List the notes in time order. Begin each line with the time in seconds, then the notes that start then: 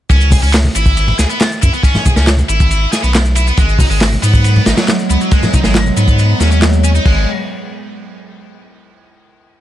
0.10 C#2 C#4, kick, ride, shaker
0.21 ride, shaker
0.31 G#4, kick, open hi-hat, high conga, shaker
0.42 C#2 C#4, shaker
0.53 snare, clap, ride, shaker
0.64 high conga, shaker
0.75 G#1 E4, ride, shaker
0.86 kick, shaker
0.97 ride, shaker
1.08 ride, low conga
1.19 C#2 G#4, snare, ride, shaker
1.30 B3, shaker
1.40 snare, clap, ride, shaker
1.52 shaker
1.62 F#2 E4, kick, ride, shaker
1.73 B3, shaker
1.83 C#4, kick, ride, shaker
1.95 snare, low conga, shaker
2.06 G#4, kick, ride, high conga, shaker
2.16 C#2 C#4, snare, shaker
2.27 snare, clap, ride, shaker
2.38 high conga, shaker
2.49 G#1 E4, ride, shaker
2.60 kick, shaker
2.71 ride, shaker
2.93 G#4, snare, ride, shaker
3.04 B1 B3, ride, shaker
3.14 snare, clap, ride, shaker
3.25 shaker
3.35 E4, ride, shaker
3.47 B3, shaker
3.57 G#1 F#3 G#3 B3, kick, ride, shaker
3.69 ride, shaker
3.79 D#4, kick, open hi-hat, high conga, shaker
3.90 G#1 G#3, shaker
4.00 snare, clap, ride, shaker
4.12 high conga, shaker
4.23 G#2 B3, ride, shaker
4.34 kick, shaker
4.44 ride, shaker
4.56 ride, low conga
4.66 G#1 D#4, snare, ride, shaker
4.77 F#3, snare, ride, shaker
4.88 snare, clap, ride, shaker
4.99 shaker
5.10 C#2 B3, shaker
5.21 F#3, shaker
5.31 G#3, kick, ride, shaker
5.43 snare, low conga, shaker
5.54 D#4, kick, ride, high conga, shaker
5.64 G#1 G#3, snare, shaker
5.75 snare, clap, ride, shaker
5.86 high conga, shaker
5.97 G#2 B3, ride, shaker
6.08 kick, shaker
6.19 ride, shaker
6.40 D#2 C#4, snare, ride, shaker
6.51 C#4, ride, shaker
6.62 snare, clap, ride, shaker
6.73 ride, shaker
6.84 C#4, shaker
6.95 D#4, shaker
7.06 G#1 G#3, kick, crash